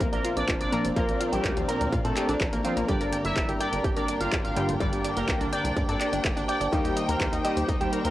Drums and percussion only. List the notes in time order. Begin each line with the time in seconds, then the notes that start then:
0.00 kick, closed hi-hat
0.13 closed hi-hat
0.25 closed hi-hat
0.37 closed hi-hat
0.48 kick, clap, closed hi-hat
0.61 closed hi-hat
0.73 closed hi-hat
0.85 closed hi-hat
0.96 kick, closed hi-hat
1.09 closed hi-hat
1.21 closed hi-hat
1.33 closed hi-hat
1.44 kick, clap, closed hi-hat
1.57 closed hi-hat
1.69 closed hi-hat
1.81 closed hi-hat
1.92 kick, closed hi-hat
2.05 closed hi-hat
2.17 clap, closed hi-hat
2.29 closed hi-hat
2.40 kick, clap, closed hi-hat
2.53 closed hi-hat
2.65 closed hi-hat
2.77 closed hi-hat
2.88 kick, closed hi-hat
3.01 closed hi-hat
3.13 closed hi-hat
3.25 closed hi-hat
3.36 kick, clap, closed hi-hat
3.49 closed hi-hat
3.61 closed hi-hat
3.73 closed hi-hat
3.84 kick, closed hi-hat
3.97 closed hi-hat
4.08 closed hi-hat
4.21 closed hi-hat
4.32 kick, clap, closed hi-hat
4.45 closed hi-hat
4.56 closed hi-hat
4.69 closed hi-hat
4.80 kick, closed hi-hat
4.93 closed hi-hat
5.05 closed hi-hat
5.17 closed hi-hat
5.28 kick, clap, closed hi-hat
5.41 closed hi-hat
5.53 closed hi-hat
5.65 closed hi-hat
5.76 kick, closed hi-hat
5.89 closed hi-hat
6.01 clap, closed hi-hat
6.13 closed hi-hat
6.25 kick, clap, closed hi-hat
6.37 closed hi-hat
6.49 closed hi-hat
6.61 closed hi-hat
6.73 kick, closed hi-hat
6.85 closed hi-hat
6.97 closed hi-hat
7.09 closed hi-hat
7.21 kick, clap, closed hi-hat
7.33 closed hi-hat
7.45 closed hi-hat
7.57 closed hi-hat
7.69 kick, closed hi-hat
7.81 closed hi-hat
7.93 closed hi-hat
8.05 closed hi-hat